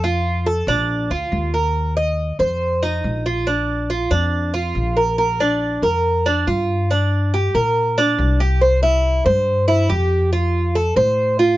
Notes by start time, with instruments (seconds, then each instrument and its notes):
Already playing: upright bass F2
0.04 cuban tres F4
0.46 cuban tres A4
0.67 upright bass A#1, cuban tres D4
1.10 upright bass D2, cuban tres F4
1.32 upright bass D#2
1.54 cuban tres A#4
1.97 cuban tres D#5
2.39 upright bass F2, cuban tres C5
2.83 cuban tres D#4
3.04 upright bass A#1
3.26 cuban tres F4
3.47 cuban tres D4
3.90 cuban tres F4
4.11 upright bass F2, cuban tres D4
4.54 cuban tres F4
4.75 upright bass A#1
4.97 cuban tres A#4
5.18 cuban tres A#4
5.40 cuban tres D4
5.82 upright bass F2, cuban tres A#4
6.26 cuban tres D4
6.47 upright bass G2, cuban tres F4
6.91 cuban tres D4
7.34 cuban tres G4
7.54 upright bass A#2, cuban tres A#4
7.98 cuban tres D4
8.18 upright bass C2
8.40 cuban tres G4
8.61 cuban tres C5
8.83 cuban tres E4
9.26 upright bass G2, cuban tres C5
9.68 cuban tres E4
9.89 upright bass F2, cuban tres G4
10.33 cuban tres F4
10.75 cuban tres A4
10.96 upright bass A2, cuban tres C5
11.39 cuban tres F4